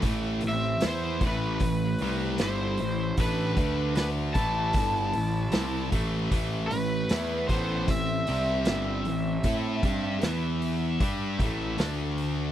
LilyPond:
<<
  \new Staff \with { instrumentName = "Electric slide guitar" } { \time 4/4 \key a \minor \tempo 4 = 77 r8 e''8 c''8 b'4. c''4 | b'4 b'8 a''2 r8 | r8 b'4 c''8 e''2~ | e''2. r4 | }
  \new Staff \with { instrumentName = "Lead electric guitar" } { \time 4/4 \key a \minor r8 c'8 e'8 a4. e'4 | d'4 d'8 e'2 r8 | r8 a4 b8 c'2~ | c'4 r2. | }
  \new Staff \with { instrumentName = "Distorted electric guitar" } { \clef bass \time 4/4 \key a \minor <a, e a>8 <a, e>8 <e b e'>8 <a, e a>8 <a, e>8 <c g c'>8 <g, d g>8 <a, e>8 | <a, e a>8 <d a d'>4 <a, e a>8 <g, d g>8 <a, e>8 <c g c'>8 <a, e a>8 | <a, e a>8 <a, e>8 <e b e'>8 <a, e a>8 <a, e>8 <c g c'>8 <g, d g>8 <a, e>8 | <a e' a'>8 <g d' g'>8 <e b e'>4 <g d' g'>8 <a, e a>8 <d a d'>4 | }
  \new Staff \with { instrumentName = "Picked electric bass" } { \clef bass \time 4/4 \key a \minor a,,8 a,,8 e,8 a,,8 a,,8 c,8 g,,8 a,,8 | a,,8 d,4 a,,8 g,,8 a,,8 c,8 a,,8 | a,,8 a,,8 e,8 a,,8 a,,8 c,8 g,,8 a,,8 | a,8 g,8 e,4 g,8 a,,8 d,4 | }
  \new DrumStaff \with { instrumentName = "Drums" } \drummode { \time 4/4 <hho bd>8 hho8 <hho sn>8 <hho bd>8 <hho bd>8 hho8 <hho sn>8 hho8 | <hho bd>8 <hho bd>8 <hho sn>8 <hho bd>8 <hho bd>8 hho8 <hho sn>8 <hho bd>8 | <hho bd>8 hho8 <hho sn>8 <hho bd>8 <hho bd>8 hho8 <hho sn>8 hho8 | <hho bd>8 <hho bd>8 <hho sn>8 hho8 <hho bd>8 <hho bd>8 <hho sn>8 hho8 | }
>>